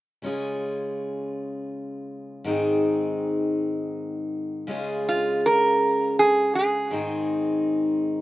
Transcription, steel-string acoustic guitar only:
0.22 2.45 C#3 soft
0.22 2.46 G#3 medium
0.22 2.47 C#4 medium
0.22 2.48 F4 medium
0.26 2.49 G#4 medium
2.44 4.68 G#2 medium
2.44 4.67 D#3 medium
2.44 4.67 G#3 medium
2.44 4.69 C4 medium
2.44 4.70 D#4 medium
2.49 4.70 G#4 medium
4.67 6.91 C#3 medium
4.67 6.91 G#3 medium
4.67 6.92 C#4 medium
4.67 6.92 F4 medium
4.71 6.93 G#4 medium
6.90 8.21 G#2 medium
6.90 8.21 D#3 medium
6.90 8.21 G#3 medium
6.90 8.21 C4 medium
6.90 8.21 D#4 medium
6.90 8.21 G#4 medium

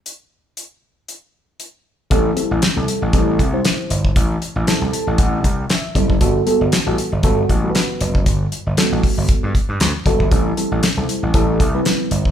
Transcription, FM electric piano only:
2.10 2.30 G3 loud
2.10 2.31 C4 medium
2.10 2.31 E4 medium
2.10 2.31 A4 loud
2.36 2.65 G3 medium
2.36 2.65 C4 medium
2.36 2.65 E4 medium
2.36 2.65 A4 medium
2.76 3.04 G3 medium
2.76 3.05 C4 medium
2.76 3.05 E4 medium
2.76 3.05 A4 medium
3.13 3.42 G3 medium
3.13 3.42 C4 medium
3.13 3.42 E4 medium
3.13 3.42 A4 loud
3.53 4.29 G3 medium
3.53 4.29 C4 medium
3.53 4.29 E4 medium
3.53 4.29 C5 medium
4.67 5.43 G3 medium
4.67 5.43 C4 medium
4.67 5.43 E4 medium
4.67 5.44 A4 medium
4.93 5.17 A5 medium
5.18 5.66 F#5 medium
5.70 6.18 E5 medium
5.95 6.15 G3 loud
5.95 6.15 C4 medium
5.95 6.15 E4 medium
5.95 6.15 A4 medium
6.20 6.41 G3 medium
6.20 6.41 B3 medium
6.20 6.41 F#4 medium
6.20 6.41 A4 loud
6.46 6.75 G3 medium
6.46 6.75 B3 medium
6.46 6.75 F#4 medium
6.46 6.76 A4 loud
6.86 7.15 G3 medium
6.86 7.15 B3 medium
6.86 7.15 F#4 medium
6.86 7.15 A4 medium
7.23 7.52 G3 loud
7.23 7.52 B3 medium
7.23 7.53 F#4 medium
7.23 7.53 A4 loud
7.63 8.39 G3 medium
7.63 8.39 B3 medium
7.63 8.40 F#4 medium
7.63 7.69 A4 medium
7.70 8.43 B4 medium
8.77 9.53 G3 medium
8.77 9.54 B3 medium
8.77 9.54 F#4 medium
8.77 9.54 A4 loud
10.06 10.25 G3 medium
10.06 10.26 B3 medium
10.06 10.26 F#4 medium
10.06 10.26 A4 loud
10.31 10.51 G3 loud
10.31 10.51 C4 medium
10.31 10.51 E4 medium
10.31 10.51 A4 medium
10.57 10.86 G3 medium
10.57 10.86 C4 medium
10.57 10.86 E4 medium
10.57 10.86 A4 medium
10.97 11.25 G3 medium
10.97 11.25 C4 medium
10.97 11.25 E4 medium
10.97 11.25 A4 medium
11.34 11.63 G3 medium
11.34 11.63 C4 medium
11.34 11.63 E4 medium
11.34 11.63 A4 loud
11.74 12.31 G3 medium
11.74 12.31 C4 medium
11.74 12.31 E4 medium
11.74 12.31 B4 medium

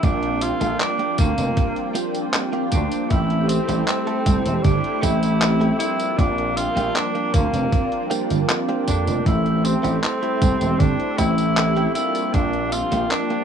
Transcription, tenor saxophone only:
0.04 0.43 D4 loud
0.42 0.81 F4 loud
0.80 1.18 D4 loud
1.19 1.92 A#3 medium
2.72 3.12 D4 medium
3.10 3.50 E4 loud
3.48 3.86 C4 medium
3.87 4.65 C4 loud
4.63 5.04 D4 loud
5.02 5.78 E4 loud
5.79 6.19 E4 loud
6.18 6.58 D4 loud
6.57 6.97 F4 loud
6.95 7.36 D4 loud
7.34 8.11 A#3 medium
8.88 9.28 D4 medium
9.26 9.66 E4 loud
9.65 10.02 C4 medium
10.02 10.81 C4 loud
10.79 11.19 D4 loud
11.18 11.94 E4 loud
11.95 12.35 E4 loud
12.34 12.74 D4 loud
12.72 13.12 F4 loud
13.11 13.44 D4 loud

